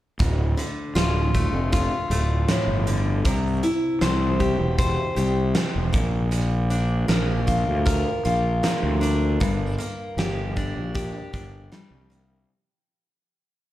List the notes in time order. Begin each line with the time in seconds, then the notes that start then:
0.19 D1 D2, kick, closed hi-hat
0.57 D3, closed hi-hat
0.95 D1 F4, snare, closed hi-hat
1.34 A3, kick, closed hi-hat
1.52 F1
1.72 F4, kick, closed hi-hat
2.10 D1 A3, closed hi-hat
2.48 A2, snare, closed hi-hat
2.68 G1
2.87 D3, closed hi-hat
3.25 C2 C3, kick, closed hi-hat
3.63 E4, closed hi-hat
4.01 C2 C5, snare, closed hi-hat
4.40 G4, kick, closed hi-hat
4.59 E1
4.78 C5, kick, closed hi-hat
5.16 C2 G4, closed hi-hat
5.55 C4, snare, closed hi-hat
5.76 E1
5.93 A#1 A#2, kick, closed hi-hat
6.31 A#2, closed hi-hat
6.70 D4, closed hi-hat
7.08 A#1 A#4, snare, closed hi-hat
7.47 F4, kick, closed hi-hat
7.67 D2
7.85 A#4, kick, closed hi-hat
8.25 A#1 F4, closed hi-hat
8.63 A#3, snare, closed hi-hat
8.83 D2
9.01 D4, closed hi-hat
9.40 G1 G2, kick, closed hi-hat
9.78 A#3, closed hi-hat
10.17 G1 G4, snare, closed hi-hat
10.56 D4, kick, closed hi-hat
10.76 A#1
10.94 G4, kick, closed hi-hat
11.33 G1 D4, kick, closed hi-hat
11.72 G3, snare, closed hi-hat
11.91 C2
12.10 A#3, closed hi-hat